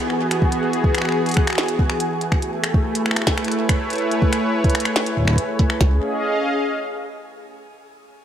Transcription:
Already playing: analog synth pad E3 B3 D#4 F#4 G#4 A#4, synth texture G#4 G#5
0.10 finger snap
0.31 finger snap, closed hi-hat
0.42 kick
0.52 closed hi-hat
0.73 closed hi-hat
0.84 kick
0.95 finger snap, closed hi-hat
0.98 finger snap
1.02 finger snap
1.05 finger snap
1.09 finger snap
1.12 finger snap
1.26 closed hi-hat
1.29 closed hi-hat
1.31 closed hi-hat
1.34 finger snap, kick, closed hi-hat
1.47 finger snap, closed hi-hat
1.50 finger snap
1.53 finger snap
1.55 finger snap
1.58 finger snap, snare
1.61 finger snap
1.63 finger snap
1.66 finger snap, closed hi-hat
1.79 kick
1.90 finger snap
2.00 closed hi-hat
2.21 closed hi-hat
2.32 finger snap, kick
2.42 analog synth pad A3, closed hi-hat
2.64 finger snap, closed hi-hat
2.70 analog synth pad E4
2.74 kick
2.82 analog synth pad B4
2.95 closed hi-hat
3.06 finger snap
3.11 finger snap
3.16 finger snap, closed hi-hat
3.22 finger snap
3.27 kick, snare
3.38 analog synth pad C#5, finger snap, closed hi-hat
3.45 finger snap, closed hi-hat
3.52 closed hi-hat
3.69 finger snap, kick, closed hi-hat
3.90 closed hi-hat
3.93 closed hi-hat
3.96 closed hi-hat
3.98 closed hi-hat
4.12 closed hi-hat
4.22 kick
4.33 finger snap, closed hi-hat
4.64 kick, closed hi-hat
4.70 closed hi-hat
4.75 finger snap, closed hi-hat
4.80 closed hi-hat
4.85 finger snap, closed hi-hat
4.96 snare
5.06 closed hi-hat
5.17 kick
5.20 kick
5.23 kick
5.25 finger snap, kick
5.28 kick
5.30 kick
5.33 kick
5.36 kick, closed hi-hat
5.59 kick, closed hi-hat
5.70 finger snap
5.80 analog synth bass C#2, analog synth pad C#4, kick, snare
5.87 analog synth pad G#4
5.93 analog synth pad D#5
6.00 analog synth pad F5

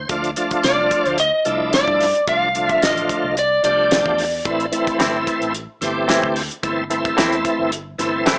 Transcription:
0.09 fingered electric bass D2, tonewheel organ F3 A3 D4 F4, kick, closed hi-hat
0.24 closed hi-hat
0.36 tonewheel organ F3 A3 D4 F4, closed hi-hat
0.51 kick, closed hi-hat
0.63 fingered electric bass C2, electric slide guitar D5, snare, closed hi-hat
0.91 kick, closed hi-hat
1.06 fingered electric bass D2, electric slide guitar C5, closed hi-hat
1.18 electric slide guitar D#5, closed hi-hat
1.45 fingered electric bass C2, tonewheel organ F3 A3 D4 E4, closed hi-hat
1.73 electric slide guitar D5, snare, closed hi-hat
1.88 fingered electric bass G2, kick
2.00 snare, open hi-hat
2.15 closed hi-hat
2.27 fingered electric bass C2, tonewheel organ F3 A3 D4 F4, electric slide guitar F5, kick, closed hi-hat
2.54 tonewheel organ D3 F3 A3 F4, closed hi-hat
2.69 electric slide guitar E5, kick, closed hi-hat
2.82 fingered electric bass A1, electric slide guitar D#5, snare, closed hi-hat
2.97 closed hi-hat
3.09 kick, closed hi-hat
3.24 fingered electric bass C2
3.37 electric slide guitar D5, closed hi-hat
3.63 fingered electric bass C2, tonewheel organ F3 A3 D4 G4, electric slide guitar D5, closed hi-hat
3.91 snare, closed hi-hat
4.06 fingered electric bass E2, kick
4.18 open hi-hat
4.45 fingered electric bass A1, tonewheel organ E3 A3 C4 E4, kick, closed hi-hat
4.60 closed hi-hat
4.72 tonewheel organ E3 A3 C4 E4, closed hi-hat
4.87 kick, closed hi-hat
4.99 fingered electric bass G1, clean electric guitar A2 E3 C4 E4, snare, closed hi-hat
5.27 kick, closed hi-hat
5.41 fingered electric bass A1, closed hi-hat
5.55 closed hi-hat
5.81 fingered electric bass G1, tonewheel organ E3 A3 C4 G4, snare, closed hi-hat
6.08 clean electric guitar A2 E3 C4 E4, snare, closed hi-hat
6.23 fingered electric bass D2, kick
6.36 open hi-hat
6.51 closed hi-hat
6.63 fingered electric bass G1, tonewheel organ E3 A3 C4 E4, kick, closed hi-hat
6.90 tonewheel organ E3 A3 C4 E4, closed hi-hat
7.05 kick, closed hi-hat
7.17 fingered electric bass E2, clean electric guitar A2 E3 C4 E4, snare, closed hi-hat
7.32 closed hi-hat
7.45 kick, closed hi-hat
7.59 fingered electric bass G1
7.72 closed hi-hat
7.98 fingered electric bass G1, tonewheel organ E3 A3 C4 E4, snare, closed hi-hat
8.26 clean electric guitar A2 E3 C4 E4, snare, closed hi-hat

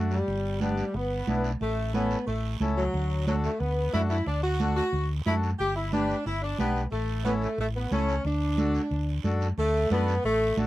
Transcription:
Already playing: fingered electric bass F#2, accordion A3 D4 F#4
0.10 saxophone section G3, short guiro
0.28 fingered electric bass G1, high conga, long guiro
0.60 saxophone section G3, accordion B3 D4 G4, high conga, short guiro
0.78 short guiro
0.94 fingered electric bass G1, saxophone section B3, high conga, long guiro
1.27 fingered electric bass B1, accordion B3 D4 E4, high conga, short guiro
1.44 short guiro
1.60 fingered electric bass A1, saxophone section A3, high conga, long guiro
1.94 saxophone section B3, accordion C#4 E4 A4, high conga, short guiro
2.11 short guiro
2.27 fingered electric bass A1, saxophone section A3, high conga, long guiro
2.60 fingered electric bass C#2, accordion C#4 E4 A4, high conga, short guiro
2.76 saxophone section F#3, short guiro
2.94 fingered electric bass D2, high conga, long guiro
3.26 saxophone section F#3, accordion D4 F#4 A4, high conga, short guiro
3.43 saxophone section A3, short guiro
3.59 fingered electric bass D2, saxophone section B3, high conga, long guiro
3.93 fingered electric bass F#2, accordion D4 F#4 A4, saxophone section E4, high conga, short guiro
4.09 saxophone section E4, short guiro
4.26 fingered electric bass D2, saxophone section D4, high conga, long guiro
4.42 saxophone section F#4
4.60 accordion D4 F#4 A4, high conga, short guiro
4.76 saxophone section F#4, short guiro
4.93 fingered electric bass D2, high conga, long guiro
5.26 fingered electric bass F#2, accordion D4 F#4 A4, saxophone section E4, high conga, short guiro
5.43 short guiro
5.59 fingered electric bass G1, saxophone section G4, high conga, long guiro
5.75 saxophone section E4
5.92 saxophone section D4, accordion D4 G4 B4, high conga, short guiro
6.09 short guiro
6.25 fingered electric bass G1, saxophone section E4, high conga, long guiro
6.42 saxophone section D4
6.58 fingered electric bass B1, saxophone section B3, accordion D4 G4 B4, high conga, short guiro
6.76 short guiro
6.91 fingered electric bass A1, saxophone section A3, high conga, long guiro
7.25 saxophone section B3, accordion C#4 E4 A4, high conga, short guiro
7.42 saxophone section A3, short guiro
7.58 fingered electric bass A1, saxophone section A3, high conga, long guiro
7.75 saxophone section B3
7.91 fingered electric bass C#2, accordion C#4 E4 A4, saxophone section C#4, high conga, short guiro
8.08 short guiro
8.25 fingered electric bass D2, saxophone section D4, high conga, long guiro
8.58 accordion D4 F#4 A4, high conga, short guiro
8.74 short guiro
8.91 fingered electric bass D2, high conga, long guiro
9.24 fingered electric bass F#2, accordion D4 F#4 A4, high conga, short guiro
9.41 short guiro
9.57 fingered electric bass D2, saxophone section A3, high conga, long guiro
9.90 fingered electric bass F#2, saxophone section B3, accordion D4 F#4 A4, high conga, short guiro
10.08 short guiro
10.24 fingered electric bass A1, saxophone section A3, long guiro
10.57 fingered electric bass A1, accordion D4 F#4 A4, high conga, short guiro

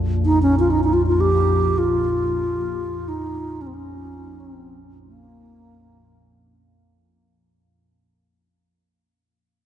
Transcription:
Already playing: ambient pad A#1 F2
0.25 bass flute D#4
0.42 bass flute C#4
0.59 bass flute F4
0.70 bass flute D#4
0.84 bass flute D#4
0.93 bass flute F4
1.07 bass flute F4
1.20 bass flute G4
1.78 bass flute F4
3.08 bass flute D#4
3.61 bass flute C#4
3.67 bass flute C4
3.74 bass flute C#4
4.40 bass flute C4
5.07 bass flute A#3

